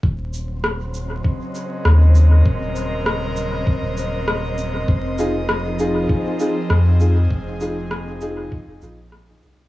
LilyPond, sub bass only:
\new Staff \with { instrumentName = "Sub bass" } { \clef bass \time 4/4 \key ees \dorian \tempo 4 = 99 ees,,2 r4 ees,4 | ees,,2 r16 ees,,4.~ ees,,16 | f,,2 r4 f,4 | f,,2 r16 f,,16 bes,,4 c,8 | }